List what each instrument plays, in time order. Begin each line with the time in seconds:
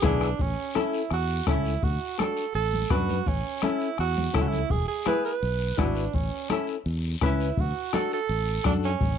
0.02 fingered electric bass B1, nylon-string guitar B3 E4 G#4, tenor saxophone D4, bombo low, bombo rim, high conga, low conga, short guiro
0.21 bombo rim, short guiro
0.39 fingered electric bass A1, tenor saxophone C#4, bombo low, high conga, long guiro
0.75 nylon-string guitar C#4 E4 A4, tenor saxophone E4, bombo rim, high conga, short guiro
0.93 short guiro
1.10 fingered electric bass E2, tenor saxophone F#4, bombo rim, high conga, long guiro
1.47 fingered electric bass C#2, nylon-string guitar C#4 E4 A4, tenor saxophone E4, bombo low, bombo rim, high conga, short guiro
1.65 short guiro
1.83 fingered electric bass D2, tenor saxophone F#4, bombo low, high conga, long guiro
2.18 nylon-string guitar D4 F#4 A4, tenor saxophone A4, bombo rim, high conga, short guiro
2.37 short guiro
2.54 fingered electric bass A1, tenor saxophone A4, high conga, long guiro
2.74 high conga
2.90 fingered electric bass F#2, nylon-string guitar D4 F#4 B4, tenor saxophone F#4, bombo low, bombo rim, high conga, short guiro
3.09 high conga, short guiro
3.26 fingered electric bass A1, tenor saxophone C#4, bombo low, high conga, long guiro
3.62 nylon-string guitar C#4 E4 A4, tenor saxophone E4, bombo rim, high conga, short guiro
3.80 short guiro
3.98 fingered electric bass E2, tenor saxophone F#4, bombo rim, high conga, long guiro
4.17 high conga
4.33 fingered electric bass C#2, nylon-string guitar C#4 E4 A4, tenor saxophone E4, bombo low, bombo rim, high conga, short guiro
4.41 tenor saxophone F#4
4.48 tenor saxophone E4
4.53 high conga, short guiro
4.70 fingered electric bass E1, tenor saxophone G#4, bombo low, high conga, long guiro
4.88 tenor saxophone G#4
5.06 nylon-string guitar B3 E4 G#4, tenor saxophone B4, bombo rim, high conga, short guiro
5.25 tenor saxophone B4, short guiro
5.42 fingered electric bass B1, high conga, long guiro
5.78 fingered electric bass G#1, nylon-string guitar B3 E4 F#4, tenor saxophone D4, bombo low, bombo rim, high conga, short guiro
5.96 short guiro
6.13 fingered electric bass A1, tenor saxophone C#4, bombo low, high conga, long guiro
6.50 nylon-string guitar C#4 E4 A4, tenor saxophone E4, bombo rim, high conga, short guiro
6.67 short guiro
6.86 fingered electric bass E2, high conga, long guiro
7.21 fingered electric bass C#2, nylon-string guitar C#4 E4 B4, bombo low, bombo rim, high conga, short guiro
7.26 tenor saxophone E4
7.40 short guiro
7.57 fingered electric bass D2, tenor saxophone F#4, bombo low, high conga, long guiro
7.93 nylon-string guitar D4 F#4 A4, tenor saxophone A4, bombo rim, high conga, short guiro
8.12 tenor saxophone A4, short guiro
8.29 fingered electric bass A1, high conga, long guiro
8.64 fingered electric bass F#2, nylon-string guitar D4 F#4 A4, tenor saxophone D4, bombo low, bombo rim, high conga, short guiro
8.83 tenor saxophone C#4, short guiro
9.01 fingered electric bass A1, bombo low, high conga, long guiro